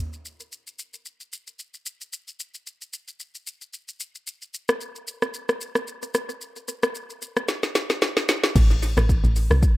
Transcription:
0.13 shaker soft
0.25 shaker medium
0.40 shaker medium
0.52 shaker medium
0.67 shaker soft
0.79 shaker medium
0.94 shaker soft
1.06 shaker medium
1.20 shaker soft
1.33 shaker medium
1.47 shaker medium
1.59 shaker medium
1.74 shaker medium
1.86 shaker loud
2.01 shaker medium
2.13 shaker medium
2.28 shaker soft
2.40 shaker medium
2.54 shaker medium
2.67 shaker medium
2.81 shaker soft
2.93 shaker medium
3.08 shaker soft
3.20 shaker medium
3.35 shaker soft
3.47 shaker medium
3.61 shaker soft
3.73 shaker medium
3.88 shaker medium
4.00 shaker loud
4.15 shaker medium
4.27 shaker medium
4.42 shaker soft
4.54 shaker medium
4.69 cross-stick loud
4.69 shaker medium
4.81 shaker medium
4.96 shaker soft
5.07 shaker medium
5.22 cross-stick medium
5.22 shaker soft
5.34 shaker medium
5.49 cross-stick medium
5.49 shaker soft
5.61 shaker medium
5.75 cross-stick medium
5.75 shaker soft
5.88 shaker medium
6.02 shaker medium
6.14 cross-stick medium
6.14 shaker loud
6.29 shaker medium
6.41 shaker medium
6.56 shaker soft
6.68 shaker medium
6.83 cross-stick loud
6.83 shaker medium
6.95 shaker medium
7.10 shaker soft
7.22 shaker medium
7.36 cross-stick medium
7.36 shaker medium
7.48 snare soft
7.48 shaker medium
7.63 snare soft
7.63 shaker medium
7.75 snare medium
7.75 shaker medium
7.90 snare medium
7.90 shaker medium
8.02 snare medium
8.02 shaker medium
8.17 snare medium
8.17 shaker medium
8.29 snare medium
8.29 shaker loud
8.44 snare medium
8.44 shaker medium
8.56 8.96 A1 loud
8.56 kick loud
8.56 crash medium
8.56 shaker medium
8.70 shaker soft
8.83 open hi-hat medium
8.83 shaker medium
8.97 9.23 A1 loud
8.97 cross-stick loud
8.97 shaker medium
9.09 kick medium
9.09 shaker medium
9.24 9.50 A1 loud
9.24 shaker soft
9.36 open hi-hat medium
9.36 shaker loud
9.51 9.62 C2 medium
9.51 cross-stick medium
9.51 shaker soft
9.63 kick loud
9.63 shaker medium

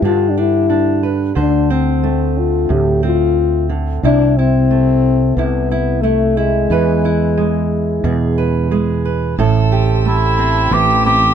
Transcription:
0.00 1.33 G2 medium
0.00 1.38 G3 medium
0.00 1.34 G4 medium
0.00 1.02 B4 medium
0.04 1.34 D3 soft
0.04 0.36 D4 soft
0.04 0.31 F4 medium
0.29 0.41 D4 medium
0.37 0.68 D4 medium
0.37 1.05 E4 medium
0.70 1.33 D4 medium
1.03 1.33 B4 medium
1.35 2.66 D2 medium
1.35 3.36 D3 medium
1.35 1.73 D4 medium
1.35 3.99 C5 medium
1.70 3.02 C4 medium
1.70 2.40 C4 medium
2.03 3.99 A3 medium
2.38 2.73 F4 medium
2.69 3.99 D2 medium
2.69 4.03 A2 medium
2.69 3.04 G4 medium
3.03 4.03 C4 medium
3.03 3.67 F4 medium
3.69 4.03 D3 medium
4.03 5.33 C2 medium
4.03 5.37 C3 medium
4.03 4.39 D4 loud
4.03 4.38 E4 medium
4.37 5.37 C4 loud
4.37 5.38 E4 medium
4.71 6.02 A3 medium
5.36 6.66 C2 medium
5.36 6.67 C3 medium
5.36 6.03 B3 medium
5.36 5.71 E4 medium
5.71 6.03 E4 medium
6.01 6.38 A3 medium
6.01 6.66 A3 medium
6.01 6.37 E4 soft
6.36 8.72 G#3 medium
6.36 7.04 E4 medium
6.70 8.00 E2 medium
6.70 9.35 E3 medium
6.70 8.37 B4 medium
7.05 9.36 E4 medium
7.37 8.70 G#3 medium
8.04 9.35 E2 medium
8.04 9.35 B2 medium
8.04 8.70 G#4 medium
8.38 9.04 B4 medium
8.71 9.35 G#3 medium
8.71 9.35 G#4 soft
9.05 9.35 B4 medium
9.38 10.68 A1 loud
9.38 11.34 A2 medium
9.38 11.34 C4 medium
9.38 11.34 A4 medium
9.38 11.34 G5 medium
9.38 11.34 A5 medium
9.38 11.34 E6 medium
9.72 11.34 G4 medium
10.05 11.34 A3 medium
10.05 10.75 E4 medium
10.39 10.71 C4 medium
10.71 11.34 A1 loud
10.71 11.34 E3 medium
10.71 11.05 C4 medium
10.71 11.05 G4 loud
11.06 11.34 C4 medium
11.06 11.34 G4 loud

